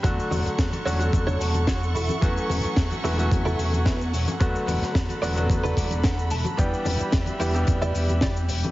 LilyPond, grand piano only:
\new Staff \with { instrumentName = "Grand piano" } { \time 4/4 \key e \dorian \tempo 4 = 110 <d fis a fis'>4. <d fis a cis' fis'>16 <d fis a fis'>4.~ <d fis a fis'>16 r8 | <e fis a cis' fis'>4. <e fis a cis' fis'>16 <e fis a cis' fis'>2~ <e fis a cis' fis'>16 | <d fis a b fis'>4. <d fis a b fis'>16 <d fis a b fis'>2~ <d fis a b fis'>16 | <e g b d' g'>4. <e g b d' g'>16 <e g b d' g'>2~ <e g b d' g'>16 | }